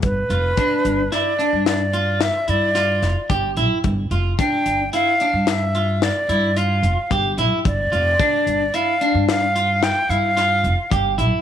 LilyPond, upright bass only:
\new Staff \with { instrumentName = "Upright bass" } { \clef bass \time 7/4 \key g \mixolydian \tempo 4 = 110 g,,8 f,,8 r8 g,,8 r8. g,4.~ g,16 g,4 f,,16 r16 g,,8 b,,16 r16 | g,,8 f,,8 r8 g,,8 r8. g,4.~ g,16 g,4 f,,16 r16 g,,8 b,,16 r16 | g,,8 f,,8 r8 g,,8 r8. g,4.~ g,16 g,4 f,,16 r16 g,,8 b,,16 r16 | }